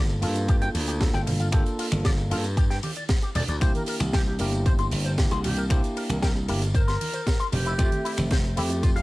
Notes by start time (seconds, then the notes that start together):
Already playing: G1 A#3 D4 F4 A4
0.09 tambourine, high bongo
0.21 G2 A#3 D4 F4 A4, open hi-hat, ride
0.35 closed hi-hat, tambourine, high bongo
0.48 G4, kick, closed hi-hat, tambourine
0.61 G5, closed hi-hat, tambourine, high bongo
0.75 D2, open hi-hat, ride
0.87 G4, closed hi-hat, tambourine
1.00 A#3 D4 F4 A4, kick, snare, closed hi-hat, tambourine
1.14 G1 G5, closed hi-hat, tambourine, high bongo
1.27 open hi-hat, ride, high conga, low conga
1.40 F4, closed hi-hat, tambourine
1.52 G1 A#3 D4 F4 G4 A4, finger snap, kick, closed hi-hat, tambourine
1.66 closed hi-hat, tambourine
1.79 F4, open hi-hat, ride
1.92 G1, finger snap, closed hi-hat, tambourine, high conga
2.05 D5, kick, snare, closed hi-hat, tambourine
2.18 tambourine, high bongo
2.30 G2 A#3 D4 F4 A4, open hi-hat, ride
2.44 closed hi-hat, tambourine, high bongo
2.57 G4, kick, closed hi-hat, tambourine
2.70 G5, snare, closed hi-hat, tambourine
2.83 G4, open hi-hat, ride, high conga
2.96 D5, closed hi-hat, tambourine
3.09 kick, snare, closed hi-hat, tambourine
3.22 G4, closed hi-hat, tambourine
3.35 D2 D5, open hi-hat, ride, high bongo, low conga
3.48 D2 D5, closed hi-hat, tambourine
3.61 C2 A#3 D4 E4 G4 C5, finger snap, kick, closed hi-hat, tambourine
3.74 A#4, closed hi-hat, tambourine, high conga
3.86 A#4, open hi-hat, ride
4.00 C2, finger snap, closed hi-hat, tambourine, high conga
4.13 G4 G5, kick, snare, closed hi-hat, tambourine
4.26 G4, tambourine, high bongo
4.39 G1 A#3 D4 E4 G4 A#4, open hi-hat, ride
4.53 closed hi-hat, tambourine, high bongo
4.66 C5, kick, closed hi-hat, tambourine
4.79 C6, closed hi-hat, tambourine, high bongo
4.91 G1, open hi-hat, ride
5.05 C5, closed hi-hat, tambourine
5.18 A#3 D4 E4 G4, kick, snare, closed hi-hat, tambourine
5.31 C2 C6, closed hi-hat, tambourine, high bongo
5.44 G4, open hi-hat, ride, high conga, low conga
5.57 A#4, closed hi-hat, tambourine
5.70 C2 A#3 D4 E4 G4 C5, finger snap, kick, closed hi-hat, tambourine
5.84 closed hi-hat, tambourine
5.97 A#4, open hi-hat, ride
6.09 C2 A#4, finger snap, closed hi-hat, tambourine, high conga
6.22 A#4 G5, kick, snare, closed hi-hat, tambourine
6.35 tambourine, high bongo
6.48 G1 A#3 D4 E4 G4 A#4, open hi-hat, ride
6.62 closed hi-hat, tambourine, high bongo
6.74 A#4 C5, kick, closed hi-hat, tambourine
6.88 C6, snare, closed hi-hat, tambourine
7.01 open hi-hat, ride, high conga
7.14 C5, closed hi-hat, tambourine
7.27 kick, snare, closed hi-hat, tambourine
7.40 C6, closed hi-hat, tambourine
7.52 F1 G4, open hi-hat, ride, high bongo, low conga
7.66 E4, closed hi-hat, tambourine
7.78 F1 A3 C4 F4 G4 E5, finger snap, kick, closed hi-hat, tambourine
7.92 closed hi-hat, tambourine, high conga
8.05 E4, open hi-hat, ride
8.17 F1, finger snap, closed hi-hat, tambourine, high conga
8.31 C5, kick, snare, closed hi-hat, tambourine
8.44 tambourine, high bongo
8.56 F2 A3 C4 E4 G4, open hi-hat, ride
8.69 closed hi-hat, tambourine, high bongo
8.83 F4, kick, closed hi-hat, tambourine
8.96 F5, closed hi-hat, tambourine, high bongo